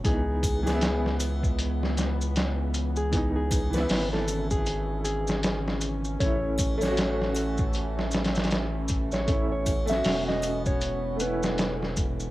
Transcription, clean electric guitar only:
X:1
M:4/4
L:1/16
Q:"Swing 16ths" 1/4=78
K:C#m
V:1 name="Clean electric guitar"
G3 G3 z8 z G- | G G2 B2 A2 G3 G3 z3 | c3 c3 z8 z c- | c c2 e2 d2 c3 B3 z3 |]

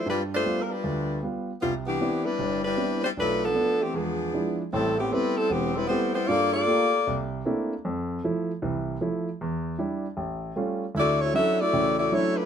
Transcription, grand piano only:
X:1
M:4/4
L:1/8
Q:"Swing" 1/4=154
K:C
V:1 name="Grand piano"
G,,2 [G,B,F] z D,,2 [G,B,F] z | C,,2 [B,CDE] z G,,,2 [B,CDE] z | B,,,2 [A,B,D] z [E,,^G,]2 [F,G,DE] z | [K:Am] [A,,,A,,]2 [A,B,CG] z E,,,2 [A,B,CG] z |
G,,2 [A,_B,FG] z C,,2 [A,B,CDE] z | F,,2 [F,A,E] z [C,,E,]2 [F,A,E] z | E,,2 [G,DE] z A,,,2 [G,A,^C^E] z | D,,2 [^F,^CDE] z [A,,,^C,]2 [F,CDE] z |]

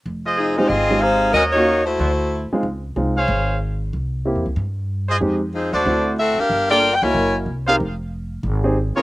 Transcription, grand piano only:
X:1
M:4/4
L:1/8
Q:"Swing" 1/4=186
K:Cphr
V:1 name="Grand piano"
z3 [A,CEG] z [A,CEG]3 | z [B,DF_G] z4 z [A,CEF] | z2 [A,CEF] z4 z | z2 [B,C=EG] z4 z |
[A,CEG] z3 [=A,C=E^F]3 z | z [B,=DF=A] z [B,=E_G_e]3 z [C_E=GB] | z4 z [CEGA] z [CDFB] |]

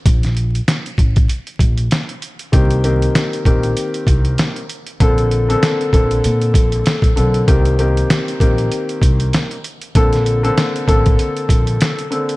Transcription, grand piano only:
X:1
M:4/4
L:1/16
Q:"Swing 16ths" 1/4=97
K:Cdor
V:1 name="Grand piano"
z16 | [E,B,CG]2 [E,B,CG]4 [E,B,CG]6- [E,B,CG] z3 | [D,B,CA]3 [D,B,CA]3 [D,B,CA]6- [D,B,CA] z [D,B,CA]2 | [E,B,CG]2 [E,B,CG]4 [E,B,CG]6- [E,B,CG] z3 |
[D,B,CA]3 [D,B,CA]3 [D,B,CA]6- [D,B,CA] z [D,B,CA]2 |]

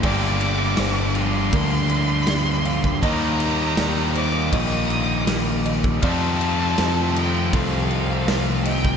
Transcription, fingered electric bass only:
X:1
M:4/4
L:1/8
Q:1/4=80
K:Gm
V:1 name="Fingered electric bass" clef=bass
G,,,2 G,,,2 D,,4 | E,,2 E,,2 B,,,4 | F,,2 F,,2 C,,4 |]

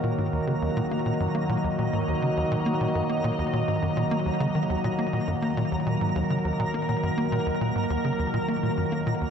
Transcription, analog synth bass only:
X:1
M:4/4
L:1/16
Q:1/4=103
K:Ebm
V:1 name="Analog synth bass" clef=bass
B,, A,, E,, D, E,, B,, B, B,, G,, B, B,, E,, B,, A,, E,, D, | E,, B,, B, B,, G,, B, B,, E,, B,, A,, G,, B,, B, E,, D, E, | E,, B,, B, B,, G,, B, B,, E,, B,, A,, E,, D, E,, B,, B, B,, | G,, B, B,, E,, B,, A,, E,, D, E,, B,, B, B,, G,, B, B,, E,, |]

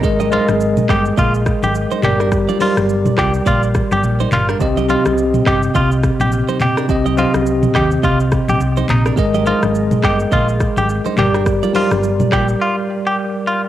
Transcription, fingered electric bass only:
X:1
M:4/4
L:1/16
Q:"Swing 16ths" 1/4=105
K:Cm
V:1 name="Fingered electric bass" clef=bass
A,,,3 A,,,3 G,,,2 B,,,3 A,,,2 z G,,,2- | G,,,2 z G,,,3 C,,2 B,,,3 G,,, B,,,2 G,,,2 | C,,3 C,,3 G,,,2 C,,3 B,,,2 z3 | C,,3 C,,3 E,,2 C,,3 B,,, C,,2 B,,,2 |
A,,,3 A,,,3 G,,,2 B,,,3 A,,,2 z G,,,2- | G,,,2 z G,,,3 B,,,2 z8 |]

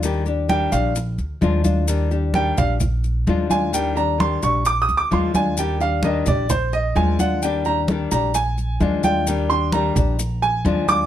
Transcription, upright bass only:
X:1
M:4/4
L:1/8
Q:1/4=130
K:Eb
V:1 name="Upright bass" clef=bass
E,,3 B,,,2 D,, E,,2- | E,,3 B,,,3 E,,2- | E,,3 B,,,2 D,, E,,2- | E,,3 B,,,3 E,,2- |
E,,3 B,,,3 E,,2- | E,,3 B,,,3 E,,2 |]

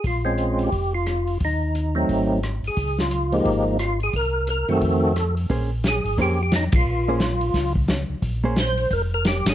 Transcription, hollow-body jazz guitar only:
X:1
M:4/4
L:1/8
Q:"Swing" 1/4=176
K:Bbdor
V:1 name="Hollow-body jazz guitar"
z8 | z8 | z8 | z8 |
[B,DAc] z3 [B,DAc] z3 | z [B,DAc] z6 | z [B,DAc] z6 |]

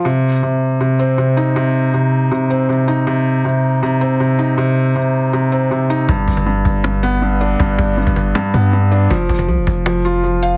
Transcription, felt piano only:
X:1
M:4/4
L:1/8
Q:1/4=159
K:Cm
V:1 name="Felt piano" clef=bass
C,2 C,2 C, C C, E | C,2 C,2 C, C C, E | C,2 C,2 C, C C, E | C,2 C,2 C, C C, E |
G,,2 G,,2 G,, =B, G,, D | G,,2 G,,2 G,, =B, G,, D | F,2 F,2 F, F F, f |]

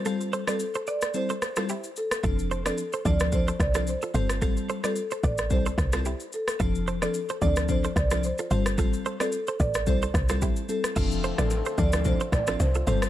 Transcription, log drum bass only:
X:1
M:4/4
L:1/16
Q:"Swing 16ths" 1/4=110
K:C
V:1 name="Log drum bass" clef=bass
z16 | F,,,4 z2 D,,4 C,,3 z G,,,2- | G,,,2 z4 A,,,2 C,,2 C,,3 z3 | F,,,4 z2 D,,4 C,,3 z G,,,2- |
G,,,2 z4 A,,,2 C,,2 C,,3 z3 | F,,,3 A,,,2 z D,,3 z A,,,2 C,,2 G,,,2 |]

